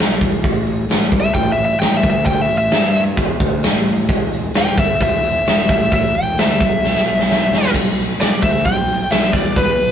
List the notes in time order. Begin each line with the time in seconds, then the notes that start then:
Already playing: B1
0.00 snare
0.21 E1, kick, open hi-hat
0.44 A1, kick, open hi-hat
0.67 open hi-hat
0.88 A1, snare, open hi-hat
1.12 C2, kick, open hi-hat
1.20 E5
1.34 A1 G5, kick, open hi-hat
1.52 E5
1.57 A1, open hi-hat
1.65 E5
1.80 A1 G5, snare, open hi-hat
1.97 E5
2.03 D2, kick, open hi-hat
2.10 E5
2.25 G5, kick, open hi-hat
2.41 E5
2.49 A1, open hi-hat
2.58 E5
2.71 G2, snare, open hi-hat
2.94 open hi-hat
3.17 E2, kick, open hi-hat
3.40 D2, kick, open hi-hat
3.63 A1, snare, open hi-hat
3.86 open hi-hat
4.09 E1, kick, open hi-hat
4.32 open hi-hat
4.54 E1 G5, snare, open hi-hat
4.77 G1 E5, kick, open hi-hat
5.00 E1 E5, kick, open hi-hat
5.23 E1, open hi-hat
5.45 E1, snare, open hi-hat
5.69 A1 E5, kick, open hi-hat
5.92 E5, kick, open hi-hat
6.14 E1 G5, open hi-hat
6.36 D2 E5, snare, open hi-hat
6.60 B1, kick, open hi-hat
6.84 snare
6.96 snare
7.20 snare
7.31 snare
7.51 E1, snare
7.65 snare
7.74 B1, kick, open hi-hat, crash
7.97 open hi-hat
8.19 B1 D5, snare, open hi-hat
8.42 D2 E5, kick, open hi-hat
8.56 snare
8.65 B1 G5, kick, open hi-hat
8.87 B1, open hi-hat
9.11 B1 E5, snare, open hi-hat
9.33 E2 D5, kick, snare, open hi-hat
9.56 B4, kick, open hi-hat
9.78 B1, open hi-hat